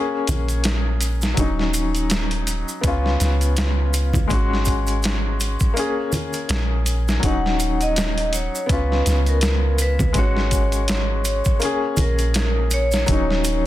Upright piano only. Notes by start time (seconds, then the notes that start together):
Already playing: A#3 C#4 G#4
1.34 F#3 C#4
1.40 D#4
2.81 B3 C#4
2.87 F4
4.28 G#3 C#4
4.33 F#4
5.74 A#3 C#4
5.79 G#4
7.20 F#3 C#4
7.26 D#4
8.66 B3 C#4
8.72 F4
10.13 G#3 C#4
10.19 F#4
11.59 A#3 C#4
11.65 G#4
13.06 F#3 C#4
13.12 D#4